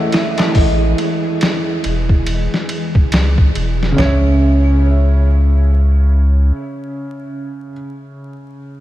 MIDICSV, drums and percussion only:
0, 0, Header, 1, 3, 480
1, 0, Start_track
1, 0, Key_signature, 4, "minor"
1, 0, Tempo, 857143
1, 312, Time_signature, 4, 2, 24, 8
1, 4930, End_track
2, 0, Start_track
2, 0, Title_t, "Darbuka"
2, 213, Note_on_c, 9, 63, 83
2, 269, Note_off_c, 9, 63, 0
2, 4930, End_track
3, 0, Start_track
3, 0, Title_t, "Drums"
3, 70, Note_on_c, 9, 51, 79
3, 79, Note_on_c, 9, 38, 103
3, 126, Note_off_c, 9, 51, 0
3, 135, Note_off_c, 9, 38, 0
3, 211, Note_on_c, 9, 51, 80
3, 220, Note_on_c, 9, 38, 104
3, 267, Note_off_c, 9, 51, 0
3, 276, Note_off_c, 9, 38, 0
3, 307, Note_on_c, 9, 46, 84
3, 309, Note_on_c, 9, 36, 111
3, 363, Note_off_c, 9, 46, 0
3, 365, Note_off_c, 9, 36, 0
3, 550, Note_on_c, 9, 51, 68
3, 606, Note_off_c, 9, 51, 0
3, 789, Note_on_c, 9, 51, 84
3, 799, Note_on_c, 9, 38, 114
3, 845, Note_off_c, 9, 51, 0
3, 855, Note_off_c, 9, 38, 0
3, 1030, Note_on_c, 9, 51, 69
3, 1086, Note_off_c, 9, 51, 0
3, 1173, Note_on_c, 9, 36, 91
3, 1229, Note_off_c, 9, 36, 0
3, 1269, Note_on_c, 9, 51, 85
3, 1325, Note_off_c, 9, 51, 0
3, 1422, Note_on_c, 9, 38, 53
3, 1478, Note_off_c, 9, 38, 0
3, 1506, Note_on_c, 9, 51, 72
3, 1562, Note_off_c, 9, 51, 0
3, 1652, Note_on_c, 9, 36, 97
3, 1708, Note_off_c, 9, 36, 0
3, 1747, Note_on_c, 9, 51, 98
3, 1757, Note_on_c, 9, 38, 127
3, 1803, Note_off_c, 9, 51, 0
3, 1813, Note_off_c, 9, 38, 0
3, 1892, Note_on_c, 9, 36, 99
3, 1948, Note_off_c, 9, 36, 0
3, 1990, Note_on_c, 9, 51, 66
3, 2046, Note_off_c, 9, 51, 0
3, 2143, Note_on_c, 9, 38, 53
3, 2199, Note_off_c, 9, 38, 0
3, 2231, Note_on_c, 9, 43, 106
3, 2240, Note_on_c, 9, 38, 100
3, 2287, Note_off_c, 9, 43, 0
3, 2296, Note_off_c, 9, 38, 0
3, 4930, End_track
0, 0, End_of_file